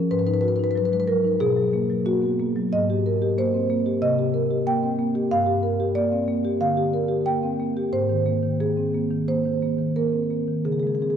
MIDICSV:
0, 0, Header, 1, 2, 480
1, 0, Start_track
1, 0, Tempo, 650054
1, 78, Time_signature, 4, 2, 24, 8
1, 5359, Tempo, 671892
1, 7279, Tempo, 701754
1, 8115, End_track
2, 0, Start_track
2, 0, Title_t, "Marimba"
2, 0, Program_c, 0, 12
2, 0, Note_on_c, 0, 61, 51
2, 78, Note_off_c, 0, 61, 0
2, 81, Note_on_c, 0, 71, 95
2, 83, Note_on_c, 0, 44, 66
2, 141, Note_off_c, 0, 71, 0
2, 141, Note_on_c, 0, 71, 73
2, 197, Note_off_c, 0, 71, 0
2, 197, Note_on_c, 0, 71, 82
2, 199, Note_on_c, 0, 63, 56
2, 249, Note_off_c, 0, 71, 0
2, 249, Note_on_c, 0, 71, 81
2, 302, Note_off_c, 0, 71, 0
2, 302, Note_on_c, 0, 71, 86
2, 317, Note_on_c, 0, 66, 52
2, 355, Note_off_c, 0, 71, 0
2, 355, Note_on_c, 0, 71, 80
2, 387, Note_off_c, 0, 63, 0
2, 413, Note_off_c, 0, 71, 0
2, 413, Note_on_c, 0, 71, 77
2, 438, Note_on_c, 0, 63, 54
2, 471, Note_off_c, 0, 71, 0
2, 471, Note_on_c, 0, 71, 81
2, 506, Note_off_c, 0, 66, 0
2, 523, Note_off_c, 0, 71, 0
2, 523, Note_on_c, 0, 71, 82
2, 557, Note_on_c, 0, 54, 55
2, 573, Note_off_c, 0, 71, 0
2, 573, Note_on_c, 0, 71, 73
2, 626, Note_off_c, 0, 63, 0
2, 630, Note_off_c, 0, 71, 0
2, 630, Note_on_c, 0, 71, 86
2, 680, Note_on_c, 0, 56, 51
2, 687, Note_off_c, 0, 71, 0
2, 687, Note_on_c, 0, 71, 79
2, 737, Note_off_c, 0, 71, 0
2, 737, Note_on_c, 0, 71, 85
2, 746, Note_off_c, 0, 54, 0
2, 765, Note_off_c, 0, 71, 0
2, 794, Note_on_c, 0, 70, 86
2, 795, Note_on_c, 0, 54, 58
2, 796, Note_off_c, 0, 56, 0
2, 917, Note_on_c, 0, 63, 51
2, 986, Note_off_c, 0, 54, 0
2, 1007, Note_off_c, 0, 44, 0
2, 1025, Note_off_c, 0, 70, 0
2, 1035, Note_off_c, 0, 63, 0
2, 1036, Note_on_c, 0, 68, 98
2, 1041, Note_on_c, 0, 47, 82
2, 1158, Note_on_c, 0, 54, 49
2, 1280, Note_on_c, 0, 58, 59
2, 1347, Note_off_c, 0, 54, 0
2, 1402, Note_on_c, 0, 54, 55
2, 1469, Note_off_c, 0, 58, 0
2, 1497, Note_off_c, 0, 68, 0
2, 1518, Note_on_c, 0, 58, 53
2, 1521, Note_on_c, 0, 66, 88
2, 1593, Note_off_c, 0, 54, 0
2, 1642, Note_on_c, 0, 59, 48
2, 1715, Note_off_c, 0, 58, 0
2, 1766, Note_off_c, 0, 59, 0
2, 1769, Note_on_c, 0, 58, 60
2, 1892, Note_on_c, 0, 54, 55
2, 1969, Note_off_c, 0, 58, 0
2, 1991, Note_off_c, 0, 47, 0
2, 1999, Note_off_c, 0, 66, 0
2, 2013, Note_on_c, 0, 75, 99
2, 2016, Note_off_c, 0, 54, 0
2, 2018, Note_on_c, 0, 44, 69
2, 2140, Note_on_c, 0, 67, 61
2, 2259, Note_on_c, 0, 70, 60
2, 2330, Note_off_c, 0, 67, 0
2, 2377, Note_on_c, 0, 67, 60
2, 2447, Note_off_c, 0, 70, 0
2, 2473, Note_off_c, 0, 75, 0
2, 2497, Note_on_c, 0, 58, 60
2, 2499, Note_on_c, 0, 72, 91
2, 2565, Note_off_c, 0, 67, 0
2, 2615, Note_on_c, 0, 60, 54
2, 2683, Note_off_c, 0, 58, 0
2, 2731, Note_off_c, 0, 60, 0
2, 2731, Note_on_c, 0, 58, 63
2, 2852, Note_on_c, 0, 67, 58
2, 2919, Note_off_c, 0, 58, 0
2, 2938, Note_off_c, 0, 44, 0
2, 2950, Note_off_c, 0, 72, 0
2, 2967, Note_on_c, 0, 48, 83
2, 2968, Note_off_c, 0, 67, 0
2, 2968, Note_on_c, 0, 75, 110
2, 3092, Note_on_c, 0, 67, 59
2, 3204, Note_on_c, 0, 70, 69
2, 3280, Note_off_c, 0, 67, 0
2, 3327, Note_on_c, 0, 67, 56
2, 3396, Note_off_c, 0, 70, 0
2, 3426, Note_off_c, 0, 75, 0
2, 3447, Note_on_c, 0, 58, 61
2, 3447, Note_on_c, 0, 79, 101
2, 3517, Note_off_c, 0, 67, 0
2, 3568, Note_on_c, 0, 60, 50
2, 3636, Note_off_c, 0, 58, 0
2, 3685, Note_off_c, 0, 60, 0
2, 3685, Note_on_c, 0, 58, 60
2, 3804, Note_on_c, 0, 67, 66
2, 3874, Note_off_c, 0, 58, 0
2, 3893, Note_off_c, 0, 48, 0
2, 3903, Note_off_c, 0, 79, 0
2, 3922, Note_off_c, 0, 67, 0
2, 3924, Note_on_c, 0, 77, 109
2, 3925, Note_on_c, 0, 43, 72
2, 4034, Note_on_c, 0, 67, 59
2, 4157, Note_on_c, 0, 70, 59
2, 4226, Note_off_c, 0, 67, 0
2, 4282, Note_on_c, 0, 67, 59
2, 4348, Note_off_c, 0, 70, 0
2, 4379, Note_off_c, 0, 77, 0
2, 4393, Note_on_c, 0, 58, 61
2, 4395, Note_on_c, 0, 74, 95
2, 4471, Note_off_c, 0, 67, 0
2, 4519, Note_on_c, 0, 60, 53
2, 4587, Note_off_c, 0, 58, 0
2, 4636, Note_on_c, 0, 58, 64
2, 4638, Note_off_c, 0, 60, 0
2, 4760, Note_on_c, 0, 67, 58
2, 4828, Note_off_c, 0, 58, 0
2, 4850, Note_off_c, 0, 43, 0
2, 4857, Note_off_c, 0, 74, 0
2, 4879, Note_on_c, 0, 50, 69
2, 4879, Note_on_c, 0, 77, 98
2, 4950, Note_off_c, 0, 67, 0
2, 5001, Note_on_c, 0, 67, 63
2, 5071, Note_off_c, 0, 50, 0
2, 5121, Note_on_c, 0, 70, 63
2, 5192, Note_off_c, 0, 67, 0
2, 5231, Note_on_c, 0, 67, 61
2, 5313, Note_off_c, 0, 70, 0
2, 5342, Note_off_c, 0, 77, 0
2, 5359, Note_on_c, 0, 58, 58
2, 5360, Note_on_c, 0, 79, 95
2, 5428, Note_off_c, 0, 67, 0
2, 5484, Note_on_c, 0, 60, 53
2, 5550, Note_off_c, 0, 58, 0
2, 5601, Note_off_c, 0, 60, 0
2, 5601, Note_on_c, 0, 58, 55
2, 5723, Note_on_c, 0, 67, 58
2, 5791, Note_off_c, 0, 58, 0
2, 5818, Note_off_c, 0, 79, 0
2, 5837, Note_on_c, 0, 44, 70
2, 5838, Note_on_c, 0, 72, 92
2, 5840, Note_off_c, 0, 67, 0
2, 5957, Note_on_c, 0, 51, 55
2, 6076, Note_on_c, 0, 58, 54
2, 6147, Note_off_c, 0, 51, 0
2, 6196, Note_on_c, 0, 51, 54
2, 6267, Note_off_c, 0, 58, 0
2, 6295, Note_off_c, 0, 72, 0
2, 6319, Note_on_c, 0, 58, 50
2, 6321, Note_on_c, 0, 68, 75
2, 6386, Note_off_c, 0, 51, 0
2, 6440, Note_on_c, 0, 60, 52
2, 6509, Note_off_c, 0, 58, 0
2, 6558, Note_off_c, 0, 60, 0
2, 6565, Note_on_c, 0, 58, 54
2, 6679, Note_on_c, 0, 51, 49
2, 6753, Note_off_c, 0, 58, 0
2, 6768, Note_off_c, 0, 44, 0
2, 6781, Note_off_c, 0, 68, 0
2, 6805, Note_on_c, 0, 72, 88
2, 6806, Note_on_c, 0, 58, 56
2, 6870, Note_off_c, 0, 51, 0
2, 6928, Note_on_c, 0, 51, 49
2, 6995, Note_off_c, 0, 58, 0
2, 7050, Note_on_c, 0, 58, 55
2, 7116, Note_off_c, 0, 51, 0
2, 7164, Note_on_c, 0, 51, 50
2, 7238, Note_off_c, 0, 58, 0
2, 7266, Note_off_c, 0, 72, 0
2, 7289, Note_on_c, 0, 70, 73
2, 7293, Note_on_c, 0, 58, 49
2, 7354, Note_off_c, 0, 51, 0
2, 7403, Note_on_c, 0, 60, 44
2, 7475, Note_off_c, 0, 58, 0
2, 7519, Note_off_c, 0, 60, 0
2, 7525, Note_on_c, 0, 58, 47
2, 7644, Note_on_c, 0, 51, 48
2, 7713, Note_off_c, 0, 58, 0
2, 7743, Note_off_c, 0, 70, 0
2, 7761, Note_off_c, 0, 51, 0
2, 7761, Note_on_c, 0, 68, 66
2, 7763, Note_on_c, 0, 49, 61
2, 7810, Note_off_c, 0, 68, 0
2, 7810, Note_on_c, 0, 68, 51
2, 7861, Note_off_c, 0, 68, 0
2, 7861, Note_on_c, 0, 68, 56
2, 7884, Note_on_c, 0, 56, 47
2, 7912, Note_off_c, 0, 68, 0
2, 7912, Note_on_c, 0, 68, 53
2, 7965, Note_off_c, 0, 68, 0
2, 7965, Note_on_c, 0, 68, 58
2, 8001, Note_on_c, 0, 60, 44
2, 8015, Note_off_c, 0, 68, 0
2, 8015, Note_on_c, 0, 68, 55
2, 8070, Note_off_c, 0, 68, 0
2, 8070, Note_on_c, 0, 68, 60
2, 8075, Note_off_c, 0, 56, 0
2, 8115, Note_off_c, 0, 49, 0
2, 8115, Note_off_c, 0, 60, 0
2, 8115, Note_off_c, 0, 68, 0
2, 8115, End_track
0, 0, End_of_file